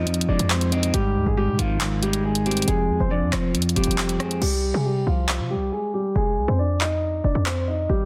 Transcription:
Already playing: F2 F3 D#4 D#5
0.06 F2, closed hi-hat
0.14 closed hi-hat
0.21 closed hi-hat
0.29 F1 G#3 D4 D5
0.39 F2, closed hi-hat
0.50 C4 C5, clap
0.61 closed hi-hat
0.72 C4 D#4 D#5, closed hi-hat
0.83 closed hi-hat
0.94 G#1 G#2 G3 G4, closed hi-hat
1.15 D#2
1.26 G#1 G#3 G#4
1.37 G#2 G3 G4
1.48 C3
1.59 G#1 D#3 F3 F4, closed hi-hat
1.81 clap, closed hi-hat
2.02 G3 G#3 G4, closed hi-hat
2.13 closed hi-hat
2.24 G#3 G#4
2.35 closed hi-hat
2.46 G3 C4 G4, closed hi-hat
2.51 closed hi-hat
2.57 closed hi-hat
2.62 closed hi-hat
2.68 F1 F2 G#3 G#4, closed hi-hat
2.89 F2
3.00 F1 C4 C5
3.11 F2 D4 D5
3.22 F2
3.32 F1 F3 C4 C5, cross-stick, clap, closed hi-hat
3.54 F2, closed hi-hat
3.62 closed hi-hat
3.69 closed hi-hat
3.76 F1 G3 C4 G4, closed hi-hat
3.84 F1, closed hi-hat
3.91 closed hi-hat
3.98 clap
4.09 closed hi-hat
4.19 G#3 C4 G#4, cross-stick, closed hi-hat
4.31 closed hi-hat
4.42 C2 G3 G4, crash
4.74 C3 G#3 G#4
4.85 G3 G4
5.07 C2 F3 F4
5.29 clap
5.39 C3
5.50 G3 G4
5.56 C2
5.72 G#3 G#4
5.94 G3 G4
6.16 F1 G#3 G#4
6.37 C2
6.48 F2 C4 C5
6.59 D4 D5
6.81 D#4 D#5, clap
7.24 F1 D4 D5
7.35 F2
7.46 C4 C5, clap
7.68 D#4 D#5
7.89 G#1 G3 G4

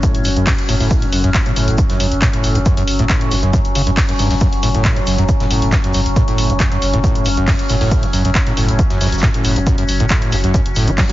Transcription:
Already playing: F#3 C#4
0.03 A2, kick, closed hi-hat, shaker
0.14 F#1, closed hi-hat
0.24 F#1 F#2, open hi-hat, shaker
0.36 F#1 F#2, closed hi-hat
0.47 F#2, kick, snare, clap, closed hi-hat, open hi-hat
0.58 closed hi-hat
0.68 F#1 A2, open hi-hat, shaker
0.80 F#1 A2, snare, open hi-hat
0.91 kick, closed hi-hat, shaker
1.02 F#1 F#2, closed hi-hat
1.12 F#1 F#2, open hi-hat, shaker
1.24 F#1 F#2, closed hi-hat
1.34 kick, snare, clap, closed hi-hat, shaker
1.46 A2, snare, closed hi-hat
1.56 F#1 A2, open hi-hat, shaker
1.68 F#1, closed hi-hat
1.78 F#2, kick, closed hi-hat, shaker
1.90 F#1 F#2, snare, closed hi-hat
2.00 F#1 F#2, open hi-hat, shaker
2.11 F#1, closed hi-hat
2.22 A2, kick, snare, clap, closed hi-hat, shaker
2.33 A2, closed hi-hat
2.44 F#1, open hi-hat, shaker
2.55 F#1 F#2, closed hi-hat
2.66 F#2, kick, closed hi-hat, shaker
2.77 F#1 F#2, closed hi-hat
2.88 F#1, open hi-hat, shaker
2.99 F#1 A2, closed hi-hat
3.09 A2, kick, snare, clap, closed hi-hat, shaker
3.21 closed hi-hat
3.31 F#1 F#2, snare, open hi-hat, shaker
3.43 F#1 F#2, closed hi-hat
3.53 kick, closed hi-hat, shaker
3.65 F#1, closed hi-hat
3.75 F#1 C#3, open hi-hat, shaker
3.87 F#1 F#2, closed hi-hat
3.97 kick, snare, clap, closed hi-hat, open hi-hat
4.09 F#2, closed hi-hat
4.19 F#1 G2, open hi-hat, shaker
4.30 F#1 F#2, snare, open hi-hat
4.40 F#2, kick, closed hi-hat, shaker
4.52 F#1, closed hi-hat
4.63 F#1 A2, open hi-hat, shaker
4.74 F#1 A2, closed hi-hat
4.84 kick, snare, clap, closed hi-hat, shaker
4.96 F#2, snare, closed hi-hat
5.06 F#1 F#2, open hi-hat, shaker
5.18 F#1 F#2, closed hi-hat
5.29 kick, closed hi-hat, shaker
5.40 F#1 A2, snare, closed hi-hat
5.50 F#1 A2, open hi-hat, shaker
5.62 F#1, closed hi-hat
5.72 F#2, kick, snare, clap, closed hi-hat, shaker
5.84 F#2, closed hi-hat
5.93 F#1 F#2, open hi-hat, shaker
6.06 F#1, closed hi-hat
6.16 A2, kick, closed hi-hat, shaker
6.28 F#1 A2, closed hi-hat
6.38 F#1, open hi-hat, shaker
6.49 F#1 F#2, closed hi-hat
6.60 F#2, kick, snare, clap, closed hi-hat, shaker
6.72 F#2, closed hi-hat
6.82 F#1, snare, open hi-hat, shaker
6.93 F#1 A2, closed hi-hat
7.04 A2, kick, closed hi-hat, shaker
7.15 F#1, closed hi-hat
7.25 F#1 F#2, open hi-hat, shaker
7.37 F#1 F#2, closed hi-hat
7.48 F#2, kick, snare, clap, closed hi-hat, open hi-hat
7.59 closed hi-hat
7.69 F#1 A2, open hi-hat, shaker
7.80 F#1 A2, snare, open hi-hat
7.91 kick, closed hi-hat, shaker
8.03 F#1 F#2, closed hi-hat
8.13 F#1 F#2, open hi-hat, shaker
8.25 F#1 F#2, closed hi-hat
8.34 kick, snare, clap, closed hi-hat, shaker
8.47 A2, snare, closed hi-hat
8.57 F#1 A2, open hi-hat, shaker
8.68 F#1, closed hi-hat
8.79 F#2, kick, closed hi-hat, shaker
8.90 F#1 F#2, snare, closed hi-hat
9.00 F#1 F#2, snare, open hi-hat, shaker
9.06 snare, shaker
9.12 F#1, snare, closed hi-hat, shaker
9.18 snare, shaker
9.23 A2, kick, snare, clap, closed hi-hat
9.34 A2, closed hi-hat
9.44 F#1, open hi-hat, shaker
9.56 F#1 F#2, closed hi-hat
9.67 F#2, kick, closed hi-hat, shaker
9.78 F#1 F#2, closed hi-hat
9.88 F#1, open hi-hat, shaker
10.00 F#1 A2, closed hi-hat
10.09 A2, kick, snare, clap, closed hi-hat, shaker
10.22 closed hi-hat
10.32 F#1 F#2, snare, open hi-hat, shaker
10.44 F#1 F#2, closed hi-hat
10.54 kick, closed hi-hat, shaker
10.66 F#1, closed hi-hat
10.75 F#1 A2, open hi-hat, shaker
10.87 F#1 F#3, closed hi-hat
10.98 F#3, kick, snare, clap, closed hi-hat, open hi-hat
11.09 F#3, closed hi-hat

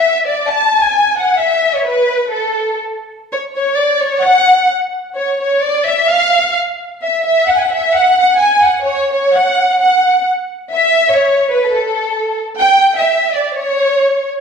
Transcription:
Already playing: E5
0.28 D5
0.49 A5
0.83 G#5
1.19 F#5
1.39 E5
1.77 C#5
1.87 B4
2.33 A4
3.32 C#5
3.56 C#5
3.78 D5
4.02 C#5
4.22 F#5
5.15 C#5
5.42 C#5
5.62 D5
5.87 E5
6.07 F5
7.03 E5
7.25 E5
7.48 F#5
7.56 G#5
7.61 F#5
7.73 E5
7.94 F#5
8.20 F#5
8.39 G#5
8.65 F#5
8.85 C#5
9.13 C#5
9.34 F#5
9.81 F#5
10.75 E5
11.12 C#5
11.52 B4
11.72 A4
12.60 G5
12.98 E5
13.34 D5
13.56 C#5

